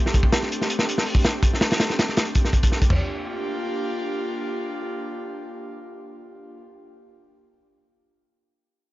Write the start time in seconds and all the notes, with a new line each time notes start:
Already playing: A3 C4 D4 G4
0.06 snare
0.14 kick, closed hi-hat
0.23 kick
0.32 snare, closed hi-hat
0.43 snare
0.52 closed hi-hat
0.61 snare
0.70 closed hi-hat
0.79 snare
0.89 closed hi-hat
0.98 snare
1.06 open hi-hat
1.15 kick
1.24 snare, closed hi-hat
1.43 kick, closed hi-hat
1.54 snare
1.61 snare, closed hi-hat
1.71 snare, closed hi-hat
1.80 snare, closed hi-hat
1.90 snare
1.99 snare, closed hi-hat
2.09 snare
2.17 snare, closed hi-hat
2.27 closed hi-hat
2.35 kick, closed hi-hat
2.45 snare
2.53 kick, closed hi-hat
2.63 kick, closed hi-hat
2.72 snare
2.82 kick, closed hi-hat
2.90 A#3 D4 F4 G4, kick, floor tom, china